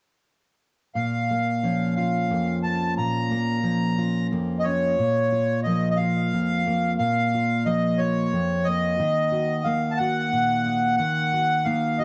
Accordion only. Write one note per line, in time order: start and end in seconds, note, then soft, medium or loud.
0.95 1.94 F5 medium
1.96 2.59 F5 medium
2.63 2.94 A5 medium
2.98 4.27 A#5 medium
4.59 4.65 D#5 medium
4.64 5.60 C#5 medium
5.63 5.89 D#5 medium
5.90 5.98 D#5 medium
5.96 6.94 F5 medium
6.99 7.67 F5 medium
7.66 8.00 D#5 medium
7.98 8.67 C#5 medium
8.64 9.68 D#5 medium
9.64 9.92 F5 medium
9.91 9.98 A5 medium
9.97 10.96 F#5 medium
10.97 11.67 F#5 loud
11.64 11.99 F5 medium
11.99 12.04 D#5 medium